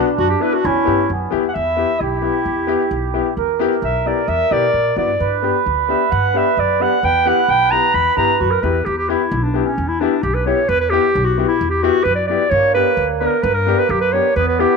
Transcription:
Already playing: accordion D4
0.18 upright bass F#2, clarinet F#4
0.30 clarinet G4
0.40 upright piano B3 D4 E4, clarinet B4
0.54 clarinet F#4
0.64 upright bass E2, accordion C#4, clarinet E4
0.85 upright bass G2, upright piano B3 E4 G4
1.10 upright bass F#2, accordion B3
1.31 upright bass E2, upright piano B3 E4 G4
1.35 accordion B3
1.49 clarinet F#5
1.54 upright bass E2, accordion E4, clarinet E5
1.77 upright piano B3 E4 G4
2.01 upright bass B1, clarinet E4, accordion G4
2.22 upright piano B3 E4 G4
2.45 upright bass E2
2.67 upright piano B3 E4 G4
2.91 upright bass B1
3.14 upright piano B3 E4 G4
3.37 upright bass E2, accordion A#4
3.59 upright piano B3 E4 G4
3.82 upright bass B1, clarinet E5
4.06 upright piano B3 E4 G4, clarinet D5
4.28 upright bass E2, clarinet E5
4.51 upright bass B2, upright piano B3 E4 G4, clarinet D5
4.73 upright bass A#2
4.96 upright bass G2, upright piano B3 E4 F#4, clarinet D5
5.20 upright bass G2, accordion B4
5.42 upright piano B3 D4 G4
5.66 upright bass D2
5.89 upright piano B3 D4 G4, clarinet E5
6.11 upright bass G2, clarinet F#5
6.34 upright piano B3 D4 G4, clarinet E5
6.57 upright bass F#2, clarinet D5
6.80 upright piano B3 D4 G4, clarinet F#5
7.03 upright bass E2, accordion B4, clarinet G5
7.25 upright piano B3 E4 G4, clarinet F#5
7.48 upright bass B1, clarinet G5
7.71 upright piano B3 E4 G4, clarinet A#5
7.94 upright bass E2, clarinet B5
8.17 upright bass G2, upright piano B3 E4 G4, clarinet A#5
8.40 upright bass F#2, clarinet F#4
8.51 clarinet A#4
8.62 upright bass E2, upright piano B3 E4 G4, clarinet B4
8.85 upright bass E2, clarinet G4
8.98 clarinet G4
9.09 upright piano B3 E4 G4, clarinet E4
9.31 upright bass B1
9.43 clarinet D4
9.54 upright piano B3 E4 G4
9.66 clarinet C#4
9.78 upright bass E2
9.88 clarinet E4
10.00 upright piano B3 E4 G4, clarinet D4
10.22 upright bass B1, clarinet G4
10.34 clarinet B4
10.46 upright piano B3 E4 G4, clarinet C#5
10.69 upright bass E2, clarinet B4
10.80 clarinet B4
10.90 upright piano B3 E4 G4, clarinet G4
11.15 upright bass B1
11.24 clarinet F#4
11.38 upright piano B3 E4 G4
11.48 clarinet E4
11.61 upright bass E2
11.70 clarinet G4
11.82 upright piano B3 E4 G4, clarinet F#4
12.03 upright bass F#2, clarinet B4
12.15 clarinet D5
12.27 upright piano B3 E4 G4, clarinet D5
12.49 upright bass G2, accordion A#3, clarinet C#5
12.74 upright piano B3 D4 G4, clarinet B4
12.97 upright bass D2
13.20 upright piano B3 D4 A#4, clarinet A#4
13.42 upright bass G2, clarinet B4
13.54 clarinet A#4
13.67 upright piano B3 D4 G4
13.78 clarinet B4
13.89 upright bass F#2, clarinet G4
14.01 clarinet B4
14.13 upright piano B3 D4 G4, clarinet C#5
14.36 upright bass E2, accordion B3, clarinet B4
14.48 clarinet B4
14.59 upright piano B3 E4 G4, clarinet G4

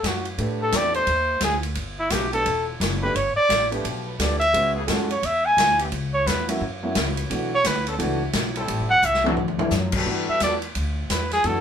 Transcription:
0.03 upright bass F#2, trumpet F#4, kick, snare, hi-hat pedal, ride
0.25 ride
0.38 upright bass A2, grand piano A3 D4 G4 B4, kick, ride
0.62 trumpet A4
0.72 upright bass E2, trombone section E3 A3 C4 G4, kick, snare, hi-hat pedal, ride
0.77 trumpet D5
0.94 trumpet C5, ride
1.07 upright bass D#2, kick, ride
1.41 upright bass D2, trumpet G#4, kick, snare, hi-hat pedal, ride
1.63 ride
1.75 upright bass G1, kick, ride
1.99 trumpet E4
2.10 upright bass B1, trombone section C#3 A3 B3 F#4, trumpet G4, kick, snare, hi-hat pedal, ride
2.33 grand piano A3 D4 G4 B4, trumpet A4, ride
2.46 upright bass E1, kick, ride
2.80 upright bass F#1, kick, snare, hi-hat pedal, ride
3.02 grand piano A3 D4 G4 B4, trumpet B4
3.15 upright bass G1, trumpet C#5, kick, ride
3.36 trumpet D5, muted upright bass stroke
3.49 upright bass A1, kick, snare, hi-hat pedal, ride
3.70 trombone section F3 A3 B3 G4, grand piano A3 D4 G4 B4, ride
3.84 upright bass B1, kick, ride
4.07 trumpet B4
4.19 upright bass D2, grand piano A3 D4 G4 B4, trumpet D5, kick, snare, hi-hat pedal, ride
4.40 trumpet E5, ride
4.53 upright bass C#2, grand piano G#3 C#4 F#4 B4, kick, ride
4.74 trombone section C#3 A3 B3 G#4
4.87 upright bass F#2, grand piano G#3 C#4 F#4 A4, kick, snare, hi-hat pedal, ride
5.10 trumpet C#5, ride
5.23 upright bass E2, trumpet E5, kick, ride
5.46 trumpet G#5
5.57 upright bass D2, kick, snare, hi-hat pedal, ride
5.79 trombone section E3 B3 C#4 G4, ride
5.92 upright bass C#2, kick, ride
6.14 trumpet C#5
6.26 upright bass E2, trumpet B4, kick, snare, hi-hat pedal, ride
6.48 grand piano F#3 A#3 C#4 E4, ride
6.61 upright bass F#2, kick
6.83 grand piano F#3 A#3 C#4 E4
6.95 upright bass C#2, trombone section E3 A#3 C#4 F#4, kick, snare, hi-hat pedal, ride
7.17 ride
7.30 upright bass B1, grand piano E3 A3 D4 F#4, kick, ride
7.55 trumpet C#5
7.64 upright bass D2, trumpet B4, kick, snare, hi-hat pedal, ride
7.87 trombone section D3 B3 C#4 A4, ride
7.98 upright bass C#2, grand piano E3 A3 D4 F#4, kick, ride
8.33 upright bass B1, kick, snare, hi-hat pedal, ride
8.56 trombone section G3 C4 E4 A4, ride
8.68 upright bass A1, kick, ride
8.80 upright bass G1
8.90 upright bass E1, trumpet F#5
9.02 upright bass C2, trumpet E5, hi-hat pedal
9.14 snare
9.23 grand piano E3 A3 D4 F#4, trombone section F#3 C4 D4 A4, high tom
9.37 upright bass D2, floor tom
9.48 floor tom
9.58 grand piano E3 A3 D4 E4, floor tom
9.71 upright bass F#2, snare, hi-hat pedal
9.92 trombone section G3 B3 F#4 A4, kick, crash
10.05 upright bass G2, grand piano E3 A3 D4 F#4, kick
10.29 trumpet E5, muted upright bass stroke
10.40 upright bass E2, trombone section G3 B3 F#4 A4, trumpet D5, kick, snare, hi-hat pedal, ride
10.62 ride
10.75 upright bass D2, kick, ride
11.10 upright bass E2, trumpet B4, kick, snare, hi-hat pedal, ride
11.31 trumpet G#4, snare, ride
11.44 upright bass F#2, grand piano E3 A3 D4 F#4, trumpet A4, kick, ride

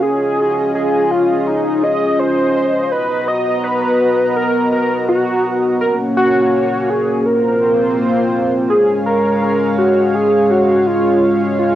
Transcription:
Already playing: analog synth pad C#4
0.02 analog synth pad F4 G#4 D#5, analog synth lead G#4
0.75 analog synth lead G#4
1.11 analog synth lead F4
1.47 analog synth lead D#4
1.83 analog synth lead D#5
2.19 analog synth lead C5
2.92 analog synth pad B3 F#4 A#5, analog synth lead B4
3.28 analog synth lead D#5
3.64 analog synth lead B4
4.36 analog synth lead A#4
4.72 analog synth lead A#4
5.09 analog synth lead F#4
5.81 analog synth pad A#3 C#4 C#5, analog synth lead A#4
6.17 analog synth lead F#4
6.89 analog synth lead G#4
7.25 analog synth pad A#3 C4 F4 C5, analog synth lead A#4
8.70 analog synth pad G#3 C#4 C#5 F5, analog synth lead G#4
9.06 analog synth lead A#4
9.42 analog synth lead A#4
9.78 analog synth lead F#4
10.14 analog synth lead G#4
10.51 analog synth lead F#4
10.87 analog synth lead F4
11.59 analog synth lead F4

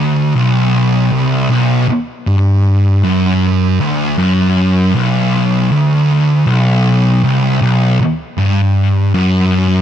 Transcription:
Already playing: distorted electric guitar D2
0.35 distorted electric guitar B1
1.12 distorted electric guitar C2
1.50 distorted electric guitar B1
1.88 muted distorted electric guitar stroke
2.27 distorted electric guitar G2
3.03 distorted electric guitar F#2
3.80 distorted electric guitar D2
4.18 distorted electric guitar F#2
4.95 distorted electric guitar B1
5.71 distorted electric guitar D2
6.47 distorted electric guitar B1
7.24 distorted electric guitar C2
7.62 distorted electric guitar B1
8.01 muted distorted electric guitar stroke
8.38 distorted electric guitar G2
9.14 distorted electric guitar F#2

